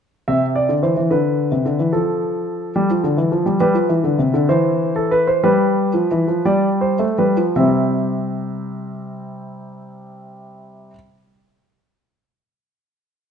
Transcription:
0.28 C3 E5
0.55 D5
0.69 D3
0.83 E3 C5
0.97 E3
1.11 D3 B4
1.52 C3
1.65 D3
1.79 E3
1.93 F3 A4
2.76 G3
2.91 F3
3.04 D3
3.17 E3
3.32 F3
3.46 G3
3.60 G3 B4
3.74 F3
3.89 E3
4.04 D3
4.19 C3
4.34 D3
4.49 E3 C5
4.96 A4
5.11 B4
5.27 C5
5.43 G3 B4
5.94 F3
6.11 E3
6.28 F3
6.45 G3 D5
6.81 C5
6.99 A3
7.18 G3 B4
7.37 F3
7.56 C3 G3 C4 E5

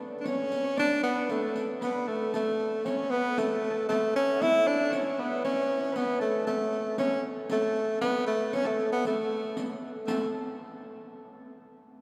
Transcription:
Already playing: A4 B4 C#5
0.20 D4 C#5
0.25 C#4, riq
0.52 riq
0.64 C#5
0.77 D4 D5, riq
1.03 B3 B4, riq
1.28 A3 A4, riq
1.56 riq
1.81 B3 B4, riq
2.08 A3 A4
2.33 A3 A4, riq
2.60 riq
2.85 C#4 C#5, riq
3.10 B3 B4
3.38 A3 A4, riq
3.55 A4
3.64 riq
3.70 A4
3.89 A3 A4, riq
4.16 C#4
4.35 F#5
4.40 E4 E5, riq
4.66 D4 D5, riq
4.90 C#4 C#5, riq
5.19 B3 B4
5.44 C#4 C#5, riq
5.52 C#5
5.61 C#5
5.71 riq
5.80 C#5
5.92 B4, riq
5.96 B3
6.19 A3 A4
6.45 A3 A4, riq
6.72 riq
6.98 C#4 C#5, riq
7.49 A3 A4, riq
7.76 riq
8.01 B3 B4, riq
8.27 A3
8.53 C#4 C#5, riq
8.64 A3 A4
8.80 riq
8.93 B3
9.05 A3 A4, riq
9.57 riq
10.06 A3 A4, riq

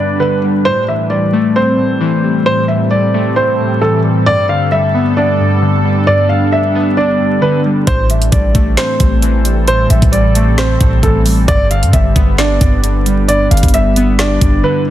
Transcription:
Already playing: D3 G3 B3 D4 B4 D5
0.00 G2
0.19 D3 B4
0.44 G3
0.65 A2 G3 C4 A4 C5
0.88 E3 E5
1.10 G3 D5
1.33 A3
1.55 C4 C5
1.78 A2
2.00 E3
2.24 G3
2.46 A2 A4 C5
2.68 E3 E5
2.90 G3 D5
3.14 A3
3.36 C4 C5
3.59 A2
3.81 E3 A4
4.04 G3
4.26 G2 D4 D5
4.49 D3 F5
4.72 G3 E5
4.94 B3
5.17 D4 D5
5.39 G2
5.62 D3
5.84 G3
6.07 G2 D5
6.29 D3 F5
6.51 G3 E5
6.75 B3
6.97 D4 D5
7.20 G2
7.41 D3 B4
7.66 G3
7.87 A1 A2 C4 A4 C5, kick, closed hi-hat
8.10 E3 E5, closed hi-hat
8.22 closed hi-hat
8.32 A1 G3 D5, kick, closed hi-hat
8.55 A1 A3, kick, closed hi-hat
8.77 C4 C5, snare, closed hi-hat
8.99 A1 A2, kick, closed hi-hat
9.22 E3, closed hi-hat
9.45 G3, closed hi-hat
9.68 A2 C5, closed hi-hat
9.90 A1 E3 E5, closed hi-hat
10.02 A1, kick, closed hi-hat
10.12 G3 D5, closed hi-hat
10.35 A3, closed hi-hat
10.58 C4 C5, snare, closed hi-hat
10.80 A1 A2, kick, closed hi-hat
11.03 A1 E3 A4, kick, closed hi-hat
11.26 G3, open hi-hat
11.48 G1 G2 G3 D4 B4 D5, kick, closed hi-hat
11.71 D3 F5, closed hi-hat
11.83 G2, closed hi-hat
11.93 G1 G3 E5, kick, closed hi-hat
12.16 G1 B3, kick, closed hi-hat
12.38 D4 D5, snare, closed hi-hat
12.61 G1 G2, kick, closed hi-hat
12.84 D3, closed hi-hat
13.06 G3, closed hi-hat
13.28 G2 E4 D5, closed hi-hat
13.51 G1 D3 F5, closed hi-hat
13.57 closed hi-hat
13.63 G1, kick, closed hi-hat
13.68 closed hi-hat
13.73 G3 E5, closed hi-hat
13.96 B3, closed hi-hat
14.19 D4 D5, snare, closed hi-hat
14.41 G1 G2, kick, closed hi-hat
14.63 D3 B4

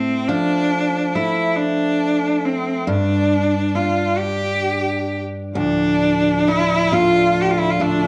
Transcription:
Already playing: A2 A3 C4
0.28 F3 D4
1.15 A3 E4
1.56 D4
2.45 C4
2.87 G2 D4
3.75 D4 F4
4.18 G4
5.52 D2 A2 F3
5.57 D4
6.48 D4 E4
6.92 A3 D4 F4
7.42 G4
7.51 F4
7.59 E4
7.70 F4
7.80 A3 D4

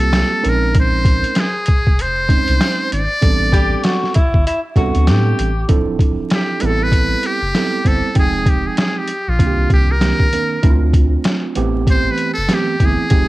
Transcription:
Already playing: C2 G3 A#3 C4 F4 G4 A4
0.00 closed hi-hat
0.13 snare, closed hi-hat
0.42 A#1 G#3 C4 C#4 D#4 A#4, closed hi-hat
0.49 A#4
0.75 kick, closed hi-hat
0.80 C5
1.05 kick, closed hi-hat
1.24 closed hi-hat
1.35 snare, closed hi-hat
1.39 G#4
1.66 kick, closed hi-hat
1.87 F1, kick
1.99 C5, closed hi-hat
2.28 G#3 C4 C#4 D#4 C5, kick, closed hi-hat
2.48 C2, closed hi-hat
2.61 snare, closed hi-hat
2.92 G#1 D5, closed hi-hat
3.22 A1 G3 B3 C4 D4 A4, kick, closed hi-hat
3.52 G4, kick, closed hi-hat
3.83 F#4, snare, closed hi-hat
4.03 snare
4.14 E4, kick, closed hi-hat
4.34 G1, kick
4.47 E4, closed hi-hat
4.76 C2 G3 B3 C4 D4 F#4 A4, kick, closed hi-hat
4.95 D2, closed hi-hat
5.07 A2 G4, snare, closed hi-hat
5.39 A1, closed hi-hat
5.68 D1 F3 C4 D4 E4 A4, kick, closed hi-hat
5.99 kick, closed hi-hat
6.30 G4, snare, closed hi-hat
6.60 A1 G3 B3 C4 E4 G#4 B4, closed hi-hat
6.65 A4
6.83 B4
6.92 kick, closed hi-hat
7.23 G4, closed hi-hat
7.41 F#1
7.55 G3 B3 C4 E4 A4, snare, closed hi-hat
7.85 G1 G3 B3 C4 E4 A4 C5, kick, closed hi-hat
8.14 F1 F3 G#3 C4 D#4 G5, kick, closed hi-hat
8.19 G#4
8.46 G4, kick, closed hi-hat
8.67 G#4
8.77 G#4, snare, closed hi-hat
8.98 G4
9.08 closed hi-hat
9.28 A#1 F4
9.39 C2 D#3 A#3 C4 D4 F4, kick, closed hi-hat
9.47 G4
9.70 C2 G4, kick, closed hi-hat
9.91 A#4
10.01 D#3 A#3 C4 D4 G4, snare, closed hi-hat
10.20 kick
10.32 D#3 A#3 C4 D4 A#4, closed hi-hat
10.63 D2 A3 C4 D4 E4, kick, closed hi-hat
10.70 F4
10.93 kick, closed hi-hat
11.24 snare, closed hi-hat
11.55 A1 E3 A3 B3 C4 G4, closed hi-hat
11.87 C5, kick, closed hi-hat
12.11 B4
12.18 closed hi-hat
12.33 F#1 A4
12.49 E3 A3 B3 C4 G4, snare, closed hi-hat
12.54 G4
12.80 G1 E3 A3 B3 C4 E4, kick, closed hi-hat
12.85 G#4
13.10 F1 F3 G#3 C4 D#4 G4, kick, closed hi-hat

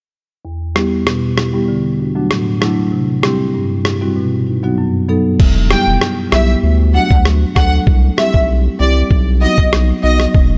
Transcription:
0.45 E2
0.75 G3 B3 E4 G4, cross-stick
1.07 B2, cross-stick
1.37 E4 G4, cross-stick
1.53 G3 B3 E4 G4
1.68 D3
1.99 D4 F#4
2.15 F#3 A3 D4 F#4
2.30 A2, cross-stick
2.61 F#3 A3 D4 E4, cross-stick
2.92 C3
3.23 G3 C4 E4 G4, cross-stick
3.54 G2
3.85 E4 G4, cross-stick
4.01 G3 C4 E4 F#4
4.16 B2
4.47 D#4 F#4
4.63 F#3 B3 D#4 F#4
4.78 F#2
5.08 F#3 B3 D#4 A4
5.40 E1, kick, crash
5.70 G3 B3 E4 G4 G5, cross-stick
5.87 E1
6.01 cross-stick
6.32 B1 G3 B3 E4 G4 E5, cross-stick
6.63 D2
6.94 F#3 A3 D4 F#4 F#5
7.11 D2, kick
7.25 cross-stick
7.56 D2 F#3 A3 D4 A4 F#5, kick, cross-stick
7.87 C2, kick
8.17 G3 C4 E4 G4 E5, cross-stick
8.34 B1, kick
8.79 C2 G3 C4 E4 G4 D5
9.11 B1, kick
9.41 F#3 B3 D#4 F#4 D#5
9.58 B1, kick
9.73 cross-stick
10.03 B1 F#3 B3 D#4 F#4 D#5
10.20 cross-stick
10.34 E1, kick

